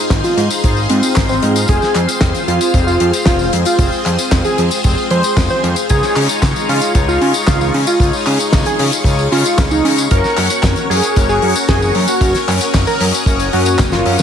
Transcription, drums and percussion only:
0.10 kick loud
0.10 snare loud
0.10 clap loud
0.10 closed hi-hat medium
0.10 tambourine soft
0.24 closed hi-hat medium
0.24 tambourine soft
0.38 closed hi-hat medium
0.50 closed hi-hat medium
0.50 tambourine medium
0.64 kick loud
0.64 closed hi-hat medium
0.64 tambourine soft
0.77 tambourine soft
0.90 closed hi-hat medium
1.03 closed hi-hat medium
1.03 tambourine medium
1.16 kick loud
1.16 snare loud
1.16 clap medium
1.16 closed hi-hat medium
1.16 tambourine medium
1.29 tambourine soft
1.42 closed hi-hat medium
1.56 closed hi-hat medium
1.56 tambourine medium
1.68 kick loud
1.68 closed hi-hat medium
1.68 tambourine soft
1.82 snare soft
1.82 tambourine soft
1.95 clap medium
1.95 closed hi-hat medium
2.09 closed hi-hat medium
2.09 tambourine medium
2.21 kick loud
2.21 snare loud
2.21 clap medium
2.21 closed hi-hat medium
2.34 closed hi-hat medium
2.34 tambourine soft
2.48 closed hi-hat medium
2.61 closed hi-hat medium
2.61 tambourine medium
2.74 kick loud
2.74 closed hi-hat medium
2.74 tambourine soft
2.88 tambourine soft
3.00 closed hi-hat medium
3.13 closed hi-hat medium
3.13 tambourine soft
3.26 kick loud
3.26 snare loud
3.26 clap medium
3.26 closed hi-hat medium
3.26 tambourine soft
3.39 tambourine soft
3.53 closed hi-hat medium
3.65 closed hi-hat medium
3.65 tambourine medium
3.79 kick loud
3.79 closed hi-hat medium
3.79 tambourine soft
3.92 tambourine soft
4.06 clap medium
4.06 closed hi-hat medium
4.19 closed hi-hat medium
4.19 tambourine medium
4.31 kick loud
4.31 snare loud
4.31 clap medium
4.31 closed hi-hat medium
4.31 tambourine soft
4.45 closed hi-hat soft
4.45 tambourine soft
4.58 closed hi-hat medium
4.71 closed hi-hat medium
4.71 tambourine medium
4.84 kick loud
4.84 closed hi-hat medium
4.84 tambourine soft
4.98 tambourine soft
5.11 closed hi-hat medium
5.23 closed hi-hat medium
5.23 tambourine medium
5.37 kick loud
5.37 snare loud
5.37 clap medium
5.37 closed hi-hat medium
5.37 tambourine medium
5.50 tambourine soft
5.64 closed hi-hat medium
5.76 closed hi-hat medium
5.76 tambourine medium
5.89 kick loud
5.89 closed hi-hat medium
5.89 tambourine medium
6.02 snare soft
6.02 tambourine soft
6.16 clap medium
6.16 open hi-hat loud
6.29 closed hi-hat medium
6.29 tambourine medium
6.42 kick loud
6.42 snare loud
6.42 clap medium
6.42 closed hi-hat medium
6.42 tambourine soft
6.56 closed hi-hat soft
6.56 tambourine soft
6.69 open hi-hat loud
6.82 closed hi-hat medium
6.82 tambourine medium
6.95 kick loud
6.95 closed hi-hat medium
6.95 tambourine medium
7.09 tambourine soft
7.21 open hi-hat loud
7.34 closed hi-hat medium
7.34 tambourine medium
7.47 kick loud
7.47 snare loud
7.47 clap medium
7.47 closed hi-hat medium
7.47 tambourine medium
7.61 tambourine soft
7.74 open hi-hat loud
7.87 closed hi-hat medium
7.87 tambourine medium
8.00 kick loud
8.00 closed hi-hat medium
8.00 tambourine medium
8.13 tambourine soft
8.26 clap medium
8.26 open hi-hat loud
8.39 closed hi-hat medium
8.39 tambourine medium
8.53 kick loud
8.53 snare loud
8.53 clap medium
8.53 closed hi-hat medium
8.53 tambourine medium
8.65 closed hi-hat medium
8.65 tambourine soft
8.79 open hi-hat loud
8.92 closed hi-hat medium
8.92 tambourine medium
9.04 kick loud
9.04 closed hi-hat medium
9.04 tambourine medium
9.19 tambourine soft
9.32 open hi-hat loud
9.45 closed hi-hat medium
9.45 tambourine medium
9.58 kick loud
9.58 snare loud
9.58 clap medium
9.58 closed hi-hat medium
9.58 tambourine medium
9.71 tambourine soft
9.85 open hi-hat loud
9.98 closed hi-hat medium
9.98 tambourine medium
10.11 kick loud
10.11 closed hi-hat loud
10.11 tambourine soft
10.24 snare soft
10.24 tambourine soft
10.37 clap medium
10.37 open hi-hat loud
10.50 closed hi-hat medium
10.50 tambourine medium
10.63 kick loud
10.63 snare loud
10.63 clap medium
10.63 closed hi-hat medium
10.63 tambourine medium
10.76 closed hi-hat medium
10.76 tambourine soft
10.91 open hi-hat loud
11.03 closed hi-hat medium
11.03 tambourine medium
11.16 kick loud
11.16 closed hi-hat medium
11.16 tambourine soft
11.29 tambourine soft
11.42 open hi-hat loud
11.56 closed hi-hat medium
11.56 tambourine medium
11.69 kick loud
11.69 snare loud
11.69 clap medium
11.69 closed hi-hat medium
11.69 tambourine soft
11.82 tambourine soft
11.95 open hi-hat loud
12.08 closed hi-hat medium
12.08 tambourine medium
12.21 kick loud
12.21 closed hi-hat loud
12.21 tambourine medium
12.35 snare soft
12.35 closed hi-hat medium
12.35 tambourine soft
12.48 clap medium
12.48 open hi-hat loud
12.61 closed hi-hat medium
12.61 tambourine medium
12.74 kick loud
12.74 snare loud
12.74 clap medium
12.74 closed hi-hat medium
12.74 tambourine soft
12.87 closed hi-hat medium
12.87 tambourine soft
13.00 open hi-hat loud
13.14 closed hi-hat medium
13.14 tambourine medium
13.26 kick loud
13.26 closed hi-hat medium
13.26 tambourine soft
13.39 closed hi-hat medium
13.39 tambourine soft
13.53 open hi-hat loud
13.66 closed hi-hat medium
13.66 tambourine medium
13.79 kick loud
13.79 snare loud
13.79 clap loud
13.79 closed hi-hat loud
13.79 tambourine medium
13.92 snare medium
13.92 closed hi-hat medium
13.92 tambourine soft
14.06 open hi-hat loud
14.19 closed hi-hat medium
14.19 tambourine medium

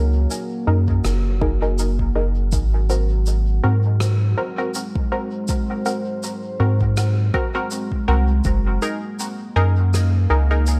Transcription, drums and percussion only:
0.31 shaker medium
0.88 kick medium
1.05 cross-stick medium
1.05 shaker medium
1.41 kick loud
1.79 shaker medium
1.99 kick medium
2.52 kick loud
2.52 shaker medium
2.90 shaker soft
3.26 shaker medium
4.00 cross-stick loud
4.00 shaker medium
4.75 shaker medium
4.95 kick loud
5.48 kick loud
5.48 shaker medium
5.86 shaker soft
6.23 shaker medium
6.81 kick medium
6.97 cross-stick medium
6.97 shaker medium
7.34 kick loud
7.71 shaker medium
7.92 kick medium
8.44 kick loud
8.44 shaker medium
8.82 shaker soft
9.20 shaker medium
9.94 cross-stick medium
9.94 shaker medium
10.67 shaker medium

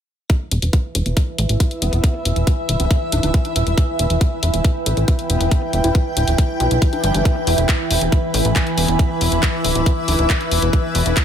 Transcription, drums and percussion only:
0.30 kick loud
0.30 closed hi-hat medium
0.51 closed hi-hat medium
0.62 closed hi-hat medium
0.73 kick loud
0.73 closed hi-hat medium
0.95 closed hi-hat medium
1.06 closed hi-hat medium
1.17 kick loud
1.17 closed hi-hat medium
1.38 closed hi-hat medium
1.49 closed hi-hat medium
1.60 kick loud
1.60 closed hi-hat medium
1.71 closed hi-hat soft
1.82 closed hi-hat medium
1.93 closed hi-hat medium
2.04 kick loud
2.04 closed hi-hat medium
2.25 closed hi-hat medium
2.36 closed hi-hat medium
2.47 kick loud
2.47 closed hi-hat medium
2.69 closed hi-hat medium
2.80 closed hi-hat medium
2.91 kick loud
2.91 closed hi-hat medium
3.12 closed hi-hat medium
3.23 closed hi-hat medium
3.34 kick loud
3.34 closed hi-hat medium
3.45 closed hi-hat soft
3.56 closed hi-hat medium
3.67 closed hi-hat medium
3.78 kick loud
3.78 closed hi-hat medium
3.99 closed hi-hat medium
4.10 closed hi-hat medium
4.21 kick loud
4.21 closed hi-hat medium
4.43 closed hi-hat medium
4.54 closed hi-hat medium
4.64 kick loud
4.64 closed hi-hat medium
4.86 closed hi-hat medium
4.97 closed hi-hat soft
5.08 kick loud
5.08 closed hi-hat medium
5.19 closed hi-hat soft
5.30 closed hi-hat medium
5.41 closed hi-hat medium
5.51 kick loud
5.51 closed hi-hat medium
5.73 closed hi-hat medium
5.84 closed hi-hat soft
5.95 kick loud
5.95 closed hi-hat medium
6.17 closed hi-hat medium
6.28 closed hi-hat medium
6.38 kick loud
6.38 closed hi-hat medium
6.60 closed hi-hat medium
6.71 closed hi-hat soft
6.82 kick loud
6.82 closed hi-hat medium
6.93 closed hi-hat soft
7.04 closed hi-hat medium
7.14 closed hi-hat soft
7.25 kick loud
7.25 closed hi-hat medium
7.47 open hi-hat loud
7.58 closed hi-hat soft
7.69 kick loud
7.69 clap loud
7.69 closed hi-hat medium
7.91 open hi-hat loud
8.01 closed hi-hat soft
8.12 kick loud
8.12 closed hi-hat medium
8.34 open hi-hat loud
8.45 closed hi-hat soft
8.56 kick loud
8.56 clap loud
8.56 closed hi-hat medium
8.67 closed hi-hat soft
8.78 open hi-hat loud
8.88 closed hi-hat soft
8.99 kick loud
8.99 closed hi-hat medium
9.21 open hi-hat loud
9.32 closed hi-hat soft
9.43 kick loud
9.43 clap loud
9.43 closed hi-hat medium
9.65 open hi-hat loud
9.75 closed hi-hat medium
9.86 kick loud
9.86 closed hi-hat medium
10.08 open hi-hat loud
10.19 closed hi-hat soft
10.30 kick loud
10.30 clap loud
10.30 closed hi-hat medium
10.41 closed hi-hat soft
10.51 open hi-hat loud
10.62 closed hi-hat soft
10.73 kick loud
10.73 closed hi-hat medium
10.95 open hi-hat loud
11.06 closed hi-hat medium
11.17 kick loud
11.17 clap loud
11.17 closed hi-hat medium

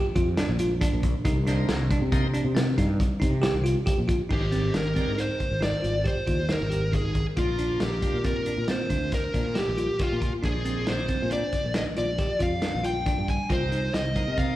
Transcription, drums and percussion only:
0.16 kick medium
0.16 closed hi-hat medium
0.37 snare loud
0.37 closed hi-hat medium
0.59 closed hi-hat medium
0.81 kick loud
0.81 closed hi-hat medium
1.03 kick medium
1.03 closed hi-hat medium
1.25 kick loud
1.25 closed hi-hat medium
1.47 snare soft
1.47 closed hi-hat medium
1.69 snare loud
1.69 closed hi-hat medium
1.91 kick medium
1.91 closed hi-hat medium
2.12 kick loud
2.12 closed hi-hat medium
2.34 closed hi-hat medium
2.57 snare loud
2.57 closed hi-hat medium
2.78 kick medium
2.78 snare soft
2.78 closed hi-hat medium
3.00 kick loud
3.00 closed hi-hat medium
3.22 kick medium
3.22 closed hi-hat medium
3.43 snare loud
3.43 closed hi-hat medium
3.66 closed hi-hat medium
3.87 kick loud
3.87 closed hi-hat medium
4.09 kick medium
4.09 closed hi-hat medium
4.30 kick medium
4.30 crash medium
4.52 snare soft
4.52 closed hi-hat medium
4.74 snare medium
4.74 closed hi-hat medium
4.96 kick medium
4.96 closed hi-hat medium
5.18 closed hi-hat medium
5.40 kick medium
5.40 closed hi-hat medium
5.62 snare medium
5.62 closed hi-hat medium
5.84 closed hi-hat medium
6.05 kick medium
6.05 closed hi-hat medium
6.27 kick medium
6.27 closed hi-hat medium
6.49 snare medium
6.49 closed hi-hat medium
6.72 closed hi-hat medium
6.93 kick medium
6.93 closed hi-hat medium
7.15 kick medium
7.15 closed hi-hat medium
7.37 kick medium
7.37 closed hi-hat medium
7.58 closed hi-hat soft
7.80 snare medium
7.80 closed hi-hat medium
8.02 kick medium
8.02 closed hi-hat medium
8.24 kick medium
8.24 closed hi-hat medium
8.46 closed hi-hat medium
8.68 snare medium
8.68 closed hi-hat medium
8.90 kick medium
8.90 closed hi-hat medium
9.12 kick medium
9.12 snare soft
9.12 closed hi-hat medium
9.34 kick medium
9.34 snare soft
9.34 closed hi-hat medium
9.55 snare loud
9.55 closed hi-hat medium
9.78 closed hi-hat medium
9.99 kick medium
9.99 snare soft
9.99 closed hi-hat medium
10.22 kick medium
10.22 closed hi-hat medium
10.44 kick medium
10.44 closed hi-hat medium
10.65 closed hi-hat soft
10.87 snare loud
10.87 closed hi-hat medium
11.08 kick medium
11.08 snare soft
11.08 closed hi-hat medium
11.31 closed hi-hat medium
11.53 kick medium
11.53 closed hi-hat medium
11.74 snare loud
11.74 closed hi-hat medium
11.97 closed hi-hat medium
12.18 kick medium
12.18 snare soft
12.18 closed hi-hat medium
12.40 kick medium
12.40 closed hi-hat medium
12.62 snare loud
12.62 closed hi-hat medium
12.84 closed hi-hat medium
13.06 kick loud
13.06 closed hi-hat medium
13.28 kick medium
13.28 closed hi-hat medium
13.50 kick medium
13.50 closed hi-hat medium
13.72 closed hi-hat soft
13.94 snare medium
13.94 closed hi-hat medium
14.16 kick medium
14.16 closed hi-hat medium
14.38 kick medium
14.38 closed hi-hat medium

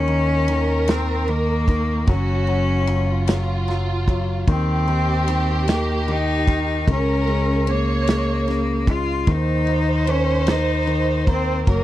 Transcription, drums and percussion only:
0.08 ride soft
0.48 ride medium
0.88 snare loud
0.88 ride medium
1.28 ride soft
1.68 kick medium
1.68 ride medium
2.07 kick loud
2.07 ride medium
2.47 ride soft
2.87 ride medium
3.27 snare loud
3.27 ride medium
3.68 snare soft
3.68 ride soft
4.08 kick medium
4.08 ride medium
4.47 kick loud
4.47 ride medium
4.88 ride soft
5.28 ride medium
5.68 snare loud
5.68 ride medium
6.08 ride soft
6.48 kick medium
6.48 ride medium
6.88 kick loud
6.88 ride medium
7.27 ride soft
7.67 ride medium
8.07 snare loud
8.07 ride medium
8.48 snare soft
8.48 ride soft
8.87 kick medium
8.87 ride medium
9.27 kick loud
9.27 ride medium
9.67 ride soft
10.07 ride medium
10.47 snare loud
10.47 ride medium
10.87 ride soft
11.27 kick medium
11.27 ride medium
11.67 kick loud
11.67 ride medium

